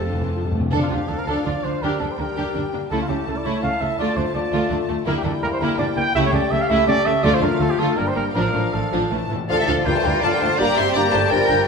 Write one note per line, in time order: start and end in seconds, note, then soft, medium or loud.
0.00 0.54 F1 medium
0.00 0.54 F2 soft
0.00 0.52 C4 medium
0.00 0.53 F4 medium
0.00 0.52 A4 medium
0.00 0.52 A5 medium
0.06 0.11 F2 soft
0.06 0.17 D3 soft
0.12 0.20 F2 soft
0.17 0.35 E3 medium
0.21 0.27 F2 soft
0.29 0.35 F2 soft
0.36 0.43 F2 medium
0.36 0.40 F3 medium
0.45 0.51 F2 medium
0.45 0.55 G3 medium
0.52 0.59 F2 medium
0.52 0.73 A3 soft
0.60 0.67 F2 medium
0.72 0.80 D2 medium
0.72 0.80 D3 medium
0.72 1.24 D3 medium
0.72 1.07 F3 medium
0.72 1.07 D4 medium
0.72 0.90 D4 medium
0.72 0.89 A4 medium
0.72 0.81 A4 medium
0.72 1.79 F5 medium
0.82 0.86 F4 medium
0.90 0.99 D2 soft
0.90 0.98 D3 soft
0.90 0.99 D4 soft
0.90 0.98 F4 soft
0.90 1.10 G4 medium
1.08 1.17 D2 soft
1.08 1.17 D3 soft
1.08 1.45 F3 medium
1.08 1.16 D4 soft
1.08 1.17 D4 soft
1.08 1.45 D4 medium
1.08 1.20 A4 medium
1.18 1.26 A#4 medium
1.27 1.35 D2 medium
1.27 1.35 D3 medium
1.27 1.44 D4 medium
1.27 1.35 A4 medium
1.27 1.44 A4 medium
1.45 1.53 D2 soft
1.45 1.53 D3 soft
1.45 1.82 F3 medium
1.45 1.53 D4 soft
1.45 1.82 D4 medium
1.45 1.53 F4 medium
1.45 1.65 D5 medium
1.64 1.72 D2 medium
1.64 1.72 D3 medium
1.64 1.71 D4 medium
1.64 1.84 C5 medium
1.82 1.90 D2 medium
1.82 1.90 D3 medium
1.82 2.18 G3 medium
1.82 1.99 D4 medium
1.82 1.99 G4 medium
1.82 2.18 G4 medium
1.82 2.02 A#4 medium
1.82 2.91 G5 medium
2.00 2.08 D2 medium
2.00 2.08 D3 medium
2.00 2.08 D4 medium
2.00 2.08 D4 soft
2.00 2.13 A4 medium
2.12 2.20 C5 medium
2.18 2.26 D2 soft
2.18 2.26 D3 medium
2.18 2.90 G3 medium
2.18 2.26 A#3 soft
2.18 2.26 D4 soft
2.18 2.90 G4 medium
2.18 2.73 A#4 medium
2.37 2.45 D2 medium
2.37 2.44 D3 medium
2.37 2.54 D4 medium
2.37 2.54 G4 medium
2.54 2.63 D2 soft
2.54 2.62 D3 soft
2.54 2.62 D4 medium
2.54 2.63 D4 medium
2.73 2.81 D2 medium
2.73 2.80 D3 medium
2.73 2.80 A#3 medium
2.73 2.81 D4 medium
2.91 2.99 C#2 medium
2.91 2.98 C#3 medium
2.91 3.26 A3 medium
2.91 3.08 A3 medium
2.91 3.26 E4 medium
2.91 3.08 E4 medium
2.91 2.99 A4 medium
2.91 5.03 A5 medium
3.01 3.05 F4 medium
3.09 3.17 C#2 medium
3.09 3.16 C#3 medium
3.09 3.17 A3 soft
3.09 3.16 C#4 soft
3.09 3.26 G4 medium
3.27 3.35 C#2 soft
3.27 3.35 C#3 soft
3.27 3.98 A3 medium
3.27 3.35 A3 medium
3.27 3.98 E4 medium
3.27 3.38 A4 medium
3.37 3.46 D5 medium
3.45 3.53 C#2 medium
3.45 3.52 C#3 medium
3.45 3.62 A3 medium
3.45 3.62 E4 medium
3.45 3.62 C#5 medium
3.62 3.71 C#2 medium
3.62 3.70 C#3 soft
3.62 3.71 A3 medium
3.62 3.70 C#4 medium
3.62 3.82 F5 medium
3.80 3.88 C#2 soft
3.80 3.89 C#3 medium
3.80 3.88 A3 medium
3.80 3.89 A3 medium
3.80 3.98 E5 medium
3.99 4.06 D2 medium
3.99 4.07 D3 medium
3.99 4.33 A3 medium
3.99 4.16 A3 medium
3.99 4.16 F4 medium
3.99 4.33 F4 medium
3.99 4.18 D5 loud
4.17 4.24 D2 medium
4.17 4.24 D3 medium
4.17 4.24 A3 medium
4.17 4.24 D4 medium
4.17 4.34 C5 medium
4.35 4.42 D2 medium
4.35 4.42 D3 medium
4.35 5.05 A3 medium
4.35 4.42 A3 medium
4.35 5.05 F4 medium
4.35 4.88 D5 medium
4.53 4.60 D2 medium
4.53 4.60 D3 medium
4.53 4.69 A3 medium
4.53 4.70 F4 medium
4.70 4.78 D2 medium
4.70 4.78 D3 soft
4.70 4.78 A3 medium
4.70 4.78 D4 medium
4.89 4.96 D2 medium
4.89 4.96 D3 medium
4.89 4.96 A3 medium
5.05 5.14 D2 medium
5.05 5.14 D3 medium
5.05 6.11 G3 medium
5.05 5.23 A#3 medium
5.05 5.23 E4 medium
5.05 6.11 E4 medium
5.05 5.11 A#4 loud
5.05 7.20 G5 medium
5.17 5.24 G4 medium
5.24 5.32 D2 medium
5.24 5.32 D3 medium
5.24 5.32 A#3 medium
5.24 5.32 D4 medium
5.24 5.33 A4 medium
5.43 5.50 D2 medium
5.43 5.50 D3 medium
5.43 5.50 A#3 medium
5.43 5.47 A#4 loud
5.53 5.60 C5 medium
5.61 5.68 D2 medium
5.61 5.68 D3 medium
5.61 5.78 A#3 medium
5.61 5.78 E4 medium
5.61 5.79 A#4 medium
5.79 5.86 D2 medium
5.79 5.86 D3 medium
5.79 5.87 A#3 medium
5.79 5.86 D4 medium
5.79 5.87 D5 loud
5.96 6.04 D2 medium
5.96 6.04 D3 medium
5.96 6.04 A#3 medium
5.96 6.14 G5 loud
6.14 6.22 C#2 medium
6.14 6.22 C#3 loud
6.14 7.98 A3 medium
6.14 6.32 A3 medium
6.14 6.32 E4 medium
6.14 7.24 G4 medium
6.14 6.19 E5 loud
6.25 6.33 C#5 loud
6.33 6.40 C#2 medium
6.33 6.40 C#3 medium
6.33 6.41 A3 medium
6.33 6.41 C#4 medium
6.33 6.53 D5 loud
6.51 6.59 C#2 medium
6.51 6.58 C#3 medium
6.51 6.59 A3 medium
6.51 6.63 E5 loud
6.61 6.71 F5 loud
6.69 6.77 C#2 medium
6.69 6.77 C#3 medium
6.69 6.86 A3 loud
6.69 6.87 E4 medium
6.69 6.87 E5 loud
6.87 6.95 C#2 medium
6.87 6.95 C#3 medium
6.87 6.95 A3 medium
6.87 6.95 C#4 medium
6.87 7.07 D5 loud
7.05 7.13 C#2 medium
7.05 7.13 C#3 medium
7.05 7.13 A3 medium
7.05 7.25 E5 loud
7.23 7.31 D2 medium
7.23 7.31 D3 medium
7.23 7.75 D3 medium
7.23 7.40 A3 medium
7.23 7.97 F4 medium
7.23 7.41 F4 medium
7.23 7.36 D5 loud
7.23 7.96 F5 medium
7.34 7.42 C5 loud
7.41 7.50 D2 medium
7.41 7.49 D3 medium
7.41 7.49 A3 medium
7.41 7.50 D4 medium
7.41 7.62 A#4 medium
7.60 7.68 D2 medium
7.60 7.67 D3 medium
7.60 7.68 A3 medium
7.60 7.72 A4 loud
7.70 7.80 G4 medium
7.78 7.86 D2 medium
7.78 7.86 D3 medium
7.78 7.96 A3 medium
7.78 7.96 F4 medium
7.78 7.99 A4 medium
7.96 8.05 G1 medium
7.96 8.05 G2 medium
7.96 8.35 G3 medium
7.96 8.05 A#3 medium
7.96 8.94 D4 medium
7.96 8.09 A#4 medium
7.96 8.34 G5 medium
8.08 8.15 C5 medium
8.15 8.24 G1 medium
8.15 8.24 G2 medium
8.15 8.23 G3 medium
8.15 8.24 A#3 medium
8.15 8.24 A#4 medium
8.35 8.43 A1 medium
8.35 8.42 A2 medium
8.35 8.94 F3 medium
8.35 8.53 F3 medium
8.35 8.53 D4 medium
8.35 8.75 A#4 loud
8.35 9.11 F5 medium
8.54 8.62 A1 medium
8.54 8.61 A2 medium
8.54 8.62 F3 medium
8.54 8.62 A3 medium
8.73 8.81 A1 medium
8.73 8.81 A2 medium
8.73 8.81 F3 medium
8.73 8.81 A3 medium
8.73 9.30 A4 medium
8.91 9.00 A1 medium
8.91 9.00 A2 medium
8.91 9.10 F3 medium
8.91 9.10 D4 medium
9.11 9.19 A1 medium
9.11 9.19 A2 medium
9.11 9.18 A2 soft
9.11 9.19 E3 medium
9.11 9.31 E3 medium
9.11 9.19 A3 medium
9.11 9.20 C#4 medium
9.11 9.31 A5 medium
9.19 9.26 A2 soft
9.27 9.38 A1 medium
9.27 9.34 A2 medium
9.27 9.38 A2 medium
9.27 9.38 E3 medium
9.31 9.42 A2 medium
9.31 9.39 A3 medium
9.49 9.57 D2 medium
9.49 9.88 F3 medium
9.49 9.54 F3 loud
9.49 9.56 D4 medium
9.49 9.56 F4 medium
9.49 9.84 A4 medium
9.49 9.58 A4 medium
9.49 10.91 D5 medium
9.49 9.58 F5 loud
9.49 9.87 A6 medium
9.58 9.68 E3 medium
9.58 9.68 G4 medium
9.58 9.63 E5 loud
9.67 9.76 D2 medium
9.67 9.86 F3 medium
9.67 9.75 D4 medium
9.67 9.75 F4 medium
9.67 9.87 A4 medium
9.67 9.75 F5 medium
9.86 9.94 D2 medium
9.86 10.25 E3 medium
9.86 9.95 G3 medium
9.86 9.93 D4 medium
9.86 10.57 F4 medium
9.86 9.93 F4 medium
9.86 9.95 A#4 medium
9.86 9.95 G5 medium
9.86 10.22 G6 medium
9.96 10.05 A3 medium
9.96 10.05 C5 medium
9.96 10.05 A5 medium
10.04 10.12 D2 medium
10.04 10.23 G3 medium
10.04 10.12 D4 medium
10.04 10.11 F4 medium
10.04 10.23 A#4 medium
10.04 10.23 G5 loud
10.22 10.30 D2 medium
10.22 10.60 D3 medium
10.22 10.26 A3 medium
10.22 10.30 D4 medium
10.22 10.30 F4 medium
10.22 10.32 D5 medium
10.22 10.27 A5 loud
10.22 10.60 F6 medium
10.32 10.36 G3 medium
10.32 10.41 A#4 medium
10.32 10.41 G5 medium
10.40 10.48 D2 medium
10.40 10.50 A3 medium
10.40 10.48 D4 medium
10.40 10.48 F4 medium
10.40 10.59 C5 medium
10.40 10.59 A5 medium
10.58 10.66 G1 medium
10.58 11.33 G3 medium
10.58 10.68 A#3 loud
10.58 10.66 D4 medium
10.58 11.31 G4 medium
10.58 10.66 G4 medium
10.58 10.77 D5 loud
10.58 10.77 A#5 loud
10.58 10.94 G6 medium
10.77 10.84 G1 medium
10.77 10.95 C4 medium
10.77 10.85 D4 medium
10.77 10.84 G4 medium
10.77 10.95 E5 loud
10.77 10.95 C6 loud
10.94 11.02 G1 medium
10.94 11.13 A#3 medium
10.94 11.02 D4 medium
10.94 11.02 G4 medium
10.94 11.01 D5 loud
10.94 11.66 D5 medium
10.94 11.13 A#5 loud
10.94 11.33 G6 medium
11.12 11.20 G1 medium
11.12 11.31 A3 medium
11.12 11.20 D4 medium
11.12 11.20 G4 medium
11.12 11.20 C5 medium
11.12 11.31 A5 loud
11.30 11.38 G1 medium
11.30 11.67 F3 medium
11.30 11.67 G3 medium
11.30 11.38 D4 medium
11.30 11.38 G4 medium
11.30 11.66 A#4 medium
11.30 11.67 A#4 medium
11.30 11.65 G5 loud
11.30 11.48 A6 medium
11.49 11.57 G1 medium
11.49 11.56 D4 medium
11.49 11.57 G4 medium
11.49 11.66 G6 medium